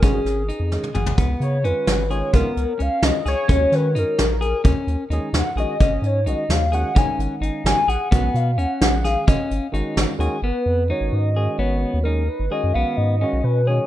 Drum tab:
HH |x-x-x-----|x-x-x-x-x-|x-x-x-x-x-|x-x-x-x-x-|
SD |--o---o---|------o---|------o-o-|--o---o---|
T1 |-------o--|----------|----------|----------|
T2 |--------o-|----------|----------|----------|
FT |---------o|----------|----------|----------|
BD |o---------|o---------|o---------|o---------|

HH |x-x-x-x-x-|x-x-x-x-x-|x-x-x-x-x-|x-x-x-x-x-|
SD |------o---|------o---|------o---|------o-o-|
T1 |----------|----------|----------|----------|
T2 |----------|----------|----------|----------|
FT |----------|----------|----------|----------|
BD |o---------|o---------|o---------|o---------|

HH |x-x-x-x-x-|----------|----------|----------|
SD |------o---|----------|----------|----------|
T1 |----------|----------|----------|----------|
T2 |----------|----------|----------|----------|
FT |----------|----------|----------|----------|
BD |o---------|----------|----------|----------|